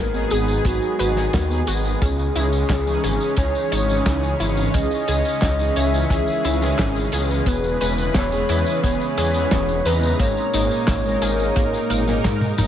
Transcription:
Already playing: detuned saw bass G#1, analog synth pad D#3 G#3 B3 G#4, synth arpeggio sound B3, soft synth lead A#4
0.14 analog polysynth F#3 B3 D#4 G#4, tambourine
0.31 detuned saw bass G#1, synth arpeggio sound G#4, soft synth lead G#4, closed hi-hat, tambourine
0.48 tambourine
0.65 detuned saw bass G#1, analog polysynth F#3 B3 D#4 G#4, synth arpeggio sound B3, soft synth lead F#4, kick, closed hi-hat, tambourine
0.82 tambourine
0.99 detuned saw bass G#1, analog polysynth F#3 B3 D#4 G#4, soft synth lead F#4, synth arpeggio sound B4, closed hi-hat, tambourine
1.16 analog polysynth F#3 B3 D#4 G#4, snare, tambourine
1.33 detuned saw bass D#2, synth arpeggio sound B3, kick, snare, closed hi-hat, tambourine
1.50 analog polysynth F#3 B3 D#4 G#4, tambourine
1.67 detuned saw bass G#1, synth arpeggio sound F#4, closed hi-hat, tambourine
1.85 tambourine
2.02 detuned saw bass C#2, analog synth pad C#3 C#4, synth arpeggio sound C#4, soft synth lead G#4, kick, closed hi-hat, tambourine
2.19 tambourine
2.36 detuned saw bass C#2, analog polysynth E3 C#4 D#4 G#4, synth arpeggio sound E4, closed hi-hat, tambourine
2.52 tambourine
2.69 detuned saw bass C#2, synth arpeggio sound C#4, kick, snare, clap, closed hi-hat, tambourine
2.87 analog polysynth E3 C#4 D#4 G#4, tambourine
3.04 detuned saw bass G#1, synth arpeggio sound G#4, closed hi-hat, tambourine
3.21 tambourine
3.37 detuned saw bass C#2, analog polysynth E3 C#4 D#4 G#4, synth arpeggio sound C#4, soft synth lead C#5, kick, closed hi-hat, tambourine
3.55 tambourine
3.72 detuned saw bass G#1, synth arpeggio sound C#5, closed hi-hat, tambourine
3.89 analog polysynth E3 C#4 D#4 G#4, tambourine
4.06 detuned saw bass C#2, synth arpeggio sound C#4, kick, snare, clap, closed hi-hat, tambourine
4.23 tambourine
4.40 detuned saw bass G#1, analog polysynth E3 C#4 D#4 G#4, synth arpeggio sound E4, closed hi-hat, tambourine
4.57 tambourine
4.74 detuned saw bass C#2, synth arpeggio sound C#4, soft synth lead D#5, kick, closed hi-hat, tambourine
4.91 tambourine
5.08 detuned saw bass C#2, analog polysynth E3 C#4 D#4 G#4, synth arpeggio sound G#4, closed hi-hat, tambourine
5.25 tambourine
5.42 detuned saw bass C#2, synth arpeggio sound C#4, kick, snare, clap, closed hi-hat, tambourine
5.59 analog polysynth E3 C#4 D#4 G#4, tambourine
5.76 detuned saw bass C#2, synth arpeggio sound C#5, soft synth lead E5, closed hi-hat, tambourine
5.94 tambourine
6.10 detuned saw bass C#2, analog polysynth D#3 E3 C#4 G#4, synth arpeggio sound C#4, kick, closed hi-hat, tambourine
6.27 tambourine
6.45 detuned saw bass C#2, synth arpeggio sound E4, closed hi-hat, tambourine
6.61 analog polysynth D#3 E3 C#4 G#4, snare, tambourine
6.78 detuned saw bass G#1, synth arpeggio sound C#4, kick, snare, clap, closed hi-hat, tambourine
6.96 tambourine
7.12 detuned saw bass C#2, analog polysynth E3 B3 C#4 G#4, synth arpeggio sound G#4, closed hi-hat, tambourine
7.31 tambourine
7.46 detuned saw bass E1, analog synth pad E3 B4, synth arpeggio sound B3, soft synth lead B4, kick, closed hi-hat, tambourine
7.64 tambourine
7.81 detuned saw bass E1, analog polysynth E3 B3 C#4 G#4, synth arpeggio sound B4, soft synth lead B4, closed hi-hat, tambourine
7.98 tambourine
8.14 detuned saw bass E1, synth arpeggio sound B3, soft synth lead C#5, kick, snare, clap, closed hi-hat, tambourine
8.32 analog polysynth E3 B3 C#4 G#4, tambourine
8.49 detuned saw bass E2, synth arpeggio sound E4, closed hi-hat, tambourine
8.66 tambourine
8.83 detuned saw bass E1, analog polysynth E3 B3 C#4 G#4, synth arpeggio sound B3, soft synth lead C#5, kick, closed hi-hat, tambourine
9.01 tambourine
9.17 detuned saw bass E2, synth arpeggio sound G#4, closed hi-hat, tambourine
9.34 analog polysynth E3 B3 C#4 G#4, tambourine
9.51 detuned saw bass E1, synth arpeggio sound B3, kick, snare, clap, closed hi-hat, tambourine
9.69 tambourine
9.85 detuned saw bass E2, analog polysynth G#3 C4 D#4 A#5, synth arpeggio sound B4, soft synth lead B4, closed hi-hat, tambourine
10.03 tambourine
10.20 detuned saw bass G#1, analog synth pad A#2 A#3 D#4, synth arpeggio sound A#3, soft synth lead C#5, kick, closed hi-hat, tambourine
10.37 tambourine
10.54 detuned saw bass G#1, analog polysynth G#3 C4 D#4 A#4, synth arpeggio sound D#4, closed hi-hat, tambourine
10.71 tambourine
10.87 detuned saw bass G#1, synth arpeggio sound A#3, kick, snare, clap, closed hi-hat, tambourine
11.05 analog polysynth G#3 A#3 D#4 A#4, tambourine
11.22 detuned saw bass G#1, synth arpeggio sound G#4, closed hi-hat, tambourine
11.39 tambourine
11.56 detuned saw bass G#1, analog polysynth G#3 A#3 D#4 A#4, synth arpeggio sound A#3, kick, closed hi-hat, tambourine
11.73 tambourine
11.90 detuned saw bass G#1, synth arpeggio sound A#4, closed hi-hat, tambourine
12.07 analog polysynth G#3 A#3 D#4 A#4, snare, tambourine
12.24 detuned saw bass G#2, synth arpeggio sound A#3, kick, snare, clap, closed hi-hat, high tom, tambourine
12.41 high tom, tambourine
12.58 detuned saw bass G#1, analog polysynth F#3 C#4 D#4 A#4, synth arpeggio sound D#4, closed hi-hat, mid tom, tambourine

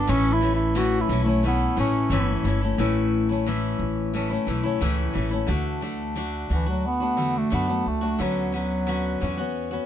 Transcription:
Already playing: bass clarinet D4
0.07 upright bass A1, steel-string acoustic guitar A2 E3 A3 C#4 E4, bass clarinet C#4, tambourine
0.33 bass clarinet E4
0.41 steel-string acoustic guitar E3 A3 C#4 E4
0.55 bass clarinet E4
0.75 steel-string acoustic guitar A2 E3 A3 C#4 E4, bass clarinet F#4, tambourine
1.01 bass clarinet E4
1.09 upright bass B1, steel-string acoustic guitar E3 A3 C#4 E4, tambourine
1.24 bass clarinet A3, steel-string acoustic guitar C#4 E4
1.29 steel-string acoustic guitar A3
1.43 steel-string acoustic guitar E3 A3 C#4 E4, bass clarinet B3
1.76 upright bass A1, steel-string acoustic guitar E3 A3 C#4 E4, bass clarinet C#4, tambourine
2.10 upright bass G1, steel-string acoustic guitar A2 E3 A3 C#4 E4, tambourine
2.44 upright bass G1, steel-string acoustic guitar E3 A3 C#4 E4, tambourine
2.61 steel-string acoustic guitar A3 C#4 E4
2.78 upright bass A1, steel-string acoustic guitar A2 E3 A3 C#4 E4
3.29 steel-string acoustic guitar A3 C#4 E4
3.46 steel-string acoustic guitar A2 E3 A3 C#4 E4
3.79 upright bass A1
4.14 steel-string acoustic guitar E3 A3 C#4 E4
4.30 steel-string acoustic guitar A3 C#4 E4
4.47 upright bass B1, steel-string acoustic guitar E3 A3 C#4 E4
4.63 steel-string acoustic guitar A3 C#4 E4
4.81 upright bass C#2, steel-string acoustic guitar A2 E3 A3 C#4 E4
5.14 upright bass A1, steel-string acoustic guitar E3 A3 C#4 E4
5.31 steel-string acoustic guitar A3 C#4 E4
5.47 upright bass D2, steel-string acoustic guitar D3 A3 D4 F#4
5.81 steel-string acoustic guitar D3 A3 D4 F#4
6.16 steel-string acoustic guitar D3 A3 D4 F#4
6.49 upright bass D2, steel-string acoustic guitar D3 A3 D4 F#4, bass clarinet E3
6.66 bass clarinet F#3, steel-string acoustic guitar A3 D4 F#4
6.87 bass clarinet B3
7.00 steel-string acoustic guitar A3 D4 F#4
7.17 upright bass E2, steel-string acoustic guitar D3 A3 D4 F#4
7.38 bass clarinet A3
7.50 upright bass F#2, steel-string acoustic guitar D3 A3 D4 F#4, bass clarinet B3
7.67 steel-string acoustic guitar A3 D4 F#4
7.86 upright bass C#2, bass clarinet A3
8.01 steel-string acoustic guitar A3 D4 F#4
8.19 upright bass D2, steel-string acoustic guitar D3 B3 C#4 F#4, bass clarinet F#3
8.52 steel-string acoustic guitar D3 B3 C#4 F#4, bass clarinet F#3
8.86 steel-string acoustic guitar D3 B3 C#4 F#4
9.20 upright bass E2, steel-string acoustic guitar D3 B3 C#4 F#4
9.37 steel-string acoustic guitar B3 C#4 F#4
9.71 steel-string acoustic guitar B3 C#4 F#4

